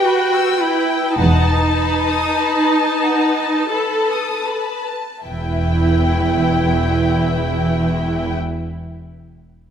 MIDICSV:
0, 0, Header, 1, 6, 480
1, 0, Start_track
1, 0, Key_signature, 1, "minor"
1, 0, Tempo, 1132075
1, 502, Time_signature, 3, 2, 24, 8
1, 502, Tempo, 1200000
1, 982, Tempo, 1345291
1, 1462, Tempo, 1538462
1, 1942, Tempo, 1463415
1, 3397, End_track
2, 0, Start_track
2, 0, Title_t, "Violin section"
2, 0, Program_c, 0, 48
2, 0, Note_on_c, 0, 71, 50
2, 24, Note_on_c, 0, 83, 41
2, 139, Note_off_c, 0, 83, 0
2, 142, Note_on_c, 0, 88, 39
2, 259, Note_off_c, 0, 88, 0
2, 259, Note_on_c, 0, 83, 38
2, 380, Note_off_c, 0, 83, 0
2, 380, Note_on_c, 0, 79, 37
2, 503, Note_off_c, 0, 79, 0
2, 506, Note_on_c, 0, 78, 40
2, 614, Note_off_c, 0, 78, 0
2, 624, Note_on_c, 0, 81, 35
2, 740, Note_off_c, 0, 81, 0
2, 742, Note_on_c, 0, 83, 33
2, 860, Note_off_c, 0, 83, 0
2, 862, Note_on_c, 0, 87, 36
2, 983, Note_off_c, 0, 87, 0
2, 987, Note_on_c, 0, 83, 35
2, 1098, Note_off_c, 0, 83, 0
2, 1102, Note_on_c, 0, 81, 32
2, 1216, Note_off_c, 0, 81, 0
2, 1217, Note_on_c, 0, 78, 30
2, 1337, Note_off_c, 0, 78, 0
2, 1337, Note_on_c, 0, 81, 28
2, 1461, Note_on_c, 0, 83, 29
2, 1463, Note_off_c, 0, 81, 0
2, 1578, Note_off_c, 0, 83, 0
2, 1578, Note_on_c, 0, 87, 27
2, 1697, Note_on_c, 0, 83, 27
2, 1701, Note_off_c, 0, 87, 0
2, 1822, Note_off_c, 0, 83, 0
2, 1824, Note_on_c, 0, 81, 24
2, 1836, Note_off_c, 0, 71, 0
2, 1941, Note_off_c, 0, 81, 0
2, 1945, Note_on_c, 0, 71, 32
2, 1945, Note_on_c, 0, 76, 32
2, 2952, Note_off_c, 0, 71, 0
2, 2952, Note_off_c, 0, 76, 0
2, 3397, End_track
3, 0, Start_track
3, 0, Title_t, "Violin section"
3, 0, Program_c, 1, 48
3, 0, Note_on_c, 1, 79, 50
3, 490, Note_off_c, 1, 79, 0
3, 508, Note_on_c, 1, 81, 44
3, 1835, Note_off_c, 1, 81, 0
3, 1944, Note_on_c, 1, 79, 31
3, 2951, Note_off_c, 1, 79, 0
3, 3397, End_track
4, 0, Start_track
4, 0, Title_t, "Viola section"
4, 0, Program_c, 2, 48
4, 16, Note_on_c, 2, 66, 58
4, 254, Note_off_c, 2, 66, 0
4, 256, Note_on_c, 2, 64, 56
4, 498, Note_on_c, 2, 63, 63
4, 502, Note_off_c, 2, 64, 0
4, 1446, Note_off_c, 2, 63, 0
4, 1460, Note_on_c, 2, 69, 45
4, 1700, Note_off_c, 2, 69, 0
4, 1943, Note_on_c, 2, 64, 37
4, 2950, Note_off_c, 2, 64, 0
4, 3397, End_track
5, 0, Start_track
5, 0, Title_t, "Cello section"
5, 0, Program_c, 3, 48
5, 503, Note_on_c, 3, 40, 53
5, 892, Note_off_c, 3, 40, 0
5, 1943, Note_on_c, 3, 40, 34
5, 2950, Note_off_c, 3, 40, 0
5, 3397, End_track
6, 0, Start_track
6, 0, Title_t, "Double bass section"
6, 0, Program_c, 4, 48
6, 501, Note_on_c, 4, 28, 55
6, 891, Note_off_c, 4, 28, 0
6, 1942, Note_on_c, 4, 28, 34
6, 2948, Note_off_c, 4, 28, 0
6, 3397, End_track
0, 0, End_of_file